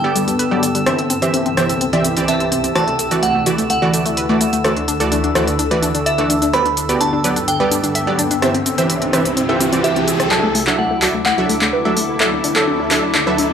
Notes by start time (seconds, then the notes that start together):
Already playing: G2 D3 B3 A4 G5 E6
0.04 G3 B3 G4 A4 D5
0.16 G3, closed hi-hat, cabasa
0.28 G3, closed hi-hat, cabasa
0.39 B4, closed hi-hat, cabasa
0.51 F#3 G3 B3 G4 D5
0.63 G3, closed hi-hat, cabasa
0.75 G3, closed hi-hat, cabasa
0.86 C2 C3 E3 C4 E4 G4 C5 E5, cross-stick, closed hi-hat, cabasa
0.98 C4, closed hi-hat
1.10 C4, closed hi-hat, cabasa
1.22 E3 C4 G4 C5 E5, closed hi-hat, cabasa
1.34 C4, closed hi-hat, cabasa
1.46 C4, closed hi-hat
1.57 E3 C4 G4 C5 E5, cross-stick, closed hi-hat, cabasa
1.69 C4, closed hi-hat, cabasa
1.81 C4, closed hi-hat, cabasa
1.93 E3 C4 G4 D5 E5, closed hi-hat
2.04 C4, closed hi-hat, cabasa
2.17 E3 C4 G4 D5, closed hi-hat, cabasa
2.28 E3 C4 G4 E5 A5, closed hi-hat, cabasa
2.40 C4, closed hi-hat
2.52 C4, closed hi-hat, cabasa
2.64 C4, closed hi-hat, cabasa
2.75 D2 D3 E3 A3 E4 F#4 A4 D5 A5, cross-stick, closed hi-hat, cabasa
2.88 A3, closed hi-hat
2.99 A3, closed hi-hat, cabasa
3.11 E3 A3 F#4 D5, closed hi-hat, cabasa
3.23 A3 F#5, closed hi-hat, cabasa
3.35 A3
3.46 E3 A3 F#4 D5, closed hi-hat, cabasa
3.58 A3, closed hi-hat, cabasa
3.70 A3 F#5, closed hi-hat, cabasa
3.82 E3 A3 F#4 D5
3.94 A3, closed hi-hat, cabasa
4.06 A3, closed hi-hat, cabasa
4.17 B4, closed hi-hat, cabasa
4.29 E3 A3 F#4 D5
4.41 A3, closed hi-hat, cabasa
4.53 A3, closed hi-hat, cabasa
4.64 E3 A3 F#4 A4 D5, cross-stick, closed hi-hat, cabasa
4.77 D4, closed hi-hat
4.88 D4, closed hi-hat, cabasa
5.00 E3 A3 F#4 A4 D5, closed hi-hat, cabasa
5.12 D4, closed hi-hat, cabasa
5.24 D4, closed hi-hat
5.35 E3 A3 F#4 A4 D5, cross-stick, closed hi-hat, cabasa
5.47 D4, closed hi-hat, cabasa
5.59 D4, closed hi-hat, cabasa
5.71 E3 A3 F#4 B4 D5, closed hi-hat
5.83 D4, closed hi-hat, cabasa
5.95 D4, closed hi-hat, cabasa
6.06 D5 E5, closed hi-hat, cabasa
6.18 E3 A3 D4 F#4 D5, closed hi-hat
6.30 D4, closed hi-hat, cabasa
6.42 D4, closed hi-hat, cabasa
6.53 G2 F#3 B3 G4 B4 D5 B5, cross-stick, closed hi-hat, riser, cabasa
6.66 D4, closed hi-hat
6.77 D4, closed hi-hat, cabasa
6.89 B3 F#4 G4 B4 D5, closed hi-hat, cabasa
7.01 D4 A5, closed hi-hat, cabasa
7.13 D4
7.24 F#3 B3 G4 B4 D5, closed hi-hat, cabasa
7.36 D4, closed hi-hat, cabasa
7.48 D4 G5, closed hi-hat, cabasa
7.60 G3 B3 G4 B4 D5
7.71 D4, closed hi-hat, cabasa
7.84 D4, closed hi-hat, cabasa
7.95 E5, closed hi-hat, cabasa
8.07 F#3 B3 D4 G4 D5
8.19 D4, closed hi-hat, cabasa
8.31 D4, closed hi-hat, cabasa
8.42 C2 C3 E3 C4 E4 G4 C5 E5, cross-stick, closed hi-hat, cabasa
8.54 C4, closed hi-hat
8.66 C4, closed hi-hat, cabasa
8.78 E3 C4 G4 C5 E5, closed hi-hat, cabasa
8.90 C4, closed hi-hat, cabasa
9.02 C4, closed hi-hat
9.13 E3 C4 G4 B4 E5, cross-stick, closed hi-hat, cabasa
9.25 C4, closed hi-hat, cabasa
9.37 C4, closed hi-hat, cabasa
9.49 E3 C4 G4 A4 E5
9.60 C4, closed hi-hat, cabasa
9.73 E3 C4 G4 D5, closed hi-hat, cabasa
9.84 E3 C4 G4 E5 A5, closed hi-hat, cabasa
9.96 C4, closed hi-hat
10.08 C4, closed hi-hat, cabasa
10.20 C4, cross-stick, closed hi-hat, cabasa
10.31 D2 D3 F#3 D4 E4 F#4 A4 E5 A5 D6, clap, riser
10.43 A3
10.55 A3, open hi-hat
10.67 F#3 D4 F#4 A4 E5, clap
10.78 A3 F#5
10.91 A3
11.02 F#3 D4 F#4 A4 E5, clap, open hi-hat
11.14 A3
11.26 A3 F#5, clap
11.38 F#3 D4 F#4 A4 E5
11.49 A3, open hi-hat
11.62 A3, clap
11.73 B4
11.85 F#3 A3 D4 A4 E5
11.97 A3, open hi-hat
12.09 A3
12.20 F#3 D4 A4 E5, clap
12.32 D4
12.44 D4, open hi-hat
12.56 F#3 D4 A4 E5, clap
12.68 D4
12.80 D4
12.91 F#3 D4 A4 E5, clap, open hi-hat
13.03 D4
13.15 D4, clap
13.27 F#3 D4 A4 B4 E5
13.38 D4, open hi-hat